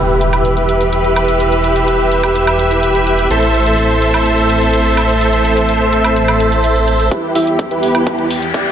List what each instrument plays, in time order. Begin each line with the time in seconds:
Already playing: detuned saw bass E1, string section E3 E4 G4 B4, supersaw synth G4 B4 E5, impact
0.09 cabasa
0.21 closed hi-hat
0.33 closed hi-hat, cabasa, high woodblock
0.45 closed hi-hat, cabasa
0.57 closed hi-hat, cabasa
0.69 closed hi-hat
0.81 closed hi-hat, cabasa
0.93 closed hi-hat, cabasa
1.04 closed hi-hat, cabasa
1.16 closed hi-hat, high woodblock
1.28 closed hi-hat, cabasa
1.40 closed hi-hat, cabasa
1.52 closed hi-hat, cabasa
1.64 closed hi-hat
1.76 closed hi-hat, cabasa
1.88 closed hi-hat, cabasa
2.00 cabasa
2.12 closed hi-hat
2.24 closed hi-hat, cabasa, high woodblock
2.35 closed hi-hat, cabasa
2.47 closed hi-hat, cabasa, high woodblock
2.59 closed hi-hat
2.71 closed hi-hat, cabasa
2.83 closed hi-hat, cabasa
2.95 closed hi-hat, cabasa
3.07 closed hi-hat
3.19 closed hi-hat, cabasa
3.30 detuned saw bass A1, string section A3 C4, supersaw synth A4 C5 E5, closed hi-hat, cabasa
3.43 closed hi-hat, cabasa
3.54 closed hi-hat
3.66 closed hi-hat, cabasa
3.78 closed hi-hat, cabasa
3.90 cabasa
4.02 closed hi-hat
4.14 closed hi-hat, cabasa, high woodblock
4.26 closed hi-hat, cabasa
4.38 closed hi-hat, cabasa
4.50 closed hi-hat
4.62 closed hi-hat, cabasa
4.74 closed hi-hat, cabasa
4.85 closed hi-hat, cabasa
4.97 closed hi-hat, high woodblock
5.09 closed hi-hat, cabasa
5.21 closed hi-hat, cabasa
5.33 closed hi-hat, cabasa
5.45 closed hi-hat
5.57 closed hi-hat, cabasa
5.69 closed hi-hat, cabasa
5.81 cabasa
5.93 closed hi-hat
6.05 closed hi-hat, cabasa, high woodblock
6.16 closed hi-hat, cabasa
6.28 closed hi-hat, cabasa, high woodblock
6.40 closed hi-hat
6.52 closed hi-hat, cabasa
6.64 closed hi-hat, cabasa
6.76 closed hi-hat, cabasa
6.88 closed hi-hat
7.00 closed hi-hat, cabasa
7.11 string section E2 E3 B3 G4, supersaw synth E4 G4 B4, kick, closed hi-hat, riser, cabasa
7.35 supersaw synth E4 G4 E5, open hi-hat, cabasa
7.47 closed hi-hat, cabasa
7.59 kick, closed hi-hat, cabasa
7.71 supersaw synth E4 G4 B4, closed hi-hat
7.83 open hi-hat, cabasa
7.95 closed hi-hat, cabasa, high woodblock
8.06 supersaw synth E4 B4, kick, closed hi-hat, cabasa
8.19 closed hi-hat
8.30 open hi-hat, cabasa
8.42 closed hi-hat, cabasa
8.54 supersaw synth E4 G4 D5, kick, closed hi-hat, cabasa